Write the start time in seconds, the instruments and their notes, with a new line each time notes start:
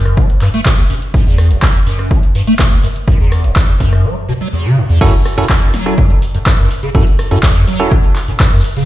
Already playing: acid bass F#2
0.06 cross-stick, closed hi-hat, shaker
0.17 acid bass F#3, kick, shaker
0.30 closed hi-hat, shaker
0.41 acid bass G2, clap, open hi-hat, shaker
0.54 acid bass A3, closed hi-hat, shaker
0.66 acid bass B2, kick, cross-stick, clap, shaker
0.78 acid bass E2, closed hi-hat
0.90 acid bass F#2, open hi-hat, shaker
1.02 closed hi-hat, shaker
1.14 acid bass F#2, kick, shaker
1.26 acid bass E2, shaker
1.38 cross-stick, open hi-hat, shaker
1.51 acid bass F#1, closed hi-hat, shaker
1.62 acid bass E2, kick, clap, shaker
1.75 acid bass E2
1.87 acid bass F#2, open hi-hat, shaker
1.99 cross-stick, closed hi-hat, shaker
2.11 acid bass F#3, kick, shaker
2.23 closed hi-hat, shaker
2.35 acid bass G2, open hi-hat, shaker
2.47 acid bass A3, closed hi-hat, shaker
2.59 acid bass B2, kick, cross-stick, clap, shaker
2.72 acid bass E2, closed hi-hat
2.83 acid bass F#2, open hi-hat, shaker
2.96 closed hi-hat, shaker
3.08 acid bass F#2, kick, shaker
3.20 acid bass E2, shaker
3.32 cross-stick, open hi-hat, shaker
3.44 acid bass F#1, closed hi-hat, shaker
3.56 acid bass E2, kick, clap, shaker
3.68 acid bass E2, shaker
3.80 acid bass F#2, kick, open hi-hat, shaker
3.93 cross-stick, closed hi-hat, shaker
4.04 acid bass F#3
4.29 acid bass B2
4.41 acid bass F#3
4.53 acid bass E2
4.65 acid bass C#3
4.77 acid bass F#2
4.89 acid bass E2
5.01 acid bass F#2, tine electric piano C#4 E4 F#4 A4, kick, crash, shaker
5.14 closed hi-hat, shaker
5.25 cross-stick, open hi-hat, shaker
5.38 acid bass F#2, tine electric piano C#4 E4 F#4 A4, closed hi-hat, shaker
5.49 acid bass E2, kick, clap, shaker
5.62 acid bass F#2, closed hi-hat
5.74 acid bass F#3, snare, open hi-hat, shaker
5.86 tine electric piano C#4 E4 F#4 A4, cross-stick, closed hi-hat, shaker
5.98 acid bass E2, kick, shaker
6.10 acid bass F#2, closed hi-hat, shaker
6.22 open hi-hat, shaker
6.35 acid bass F#2, closed hi-hat, shaker
6.46 acid bass F#2, kick, cross-stick, clap, shaker
6.59 acid bass F#2
6.71 open hi-hat, shaker
6.83 acid bass C#3, closed hi-hat, shaker
6.95 acid bass F#2, tine electric piano C#4 E4 F#4 A4, kick, shaker
7.07 closed hi-hat, shaker
7.19 cross-stick, open hi-hat, shaker
7.31 acid bass F#2, tine electric piano C#4 E4 F#4 A4, closed hi-hat, shaker
7.43 acid bass E2, kick, clap, shaker
7.56 acid bass F#2, closed hi-hat
7.67 acid bass F#3, open hi-hat, shaker
7.80 tine electric piano C#4 E4 F#4 A4, cross-stick, closed hi-hat, shaker
7.92 acid bass E2, kick, shaker
8.04 acid bass F#2, closed hi-hat, shaker
8.16 clap, open hi-hat, shaker
8.28 acid bass F#2, closed hi-hat, shaker
8.40 acid bass F#2, kick, cross-stick, clap, shaker
8.52 acid bass F#2
8.64 open hi-hat, shaker
8.77 acid bass C#3, closed hi-hat, shaker